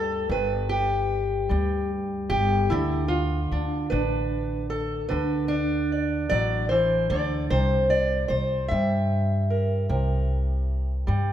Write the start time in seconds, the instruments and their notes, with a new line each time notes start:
Already playing: upright bass D2, steel-string acoustic guitar G2 G3 A4
0.29 upright bass G1, steel-string acoustic guitar G2 B4
0.69 steel-string acoustic guitar G4
1.49 upright bass D2, steel-string acoustic guitar G3
2.30 upright bass G1, steel-string acoustic guitar G4
2.70 upright bass D2, steel-string acoustic guitar D3 E4
3.08 steel-string acoustic guitar F4
3.52 upright bass D2, steel-string acoustic guitar D4
3.90 upright bass A1, steel-string acoustic guitar D4 B4
4.70 steel-string acoustic guitar A4
5.09 upright bass D2, steel-string acoustic guitar D3 B4
5.48 steel-string acoustic guitar D4
5.92 steel-string acoustic guitar D5
6.29 upright bass A1, steel-string acoustic guitar F#3 D5
6.69 steel-string acoustic guitar E3 C5
7.10 upright bass D2, steel-string acoustic guitar D3 D5
7.50 upright bass C2, steel-string acoustic guitar C3 C5
7.90 steel-string acoustic guitar D5
8.28 upright bass C2, steel-string acoustic guitar C5
8.68 upright bass G2, steel-string acoustic guitar G3 E5
9.50 steel-string acoustic guitar A#4
9.89 upright bass C2, steel-string acoustic guitar C3 A#4
11.07 upright bass G2, steel-string acoustic guitar G3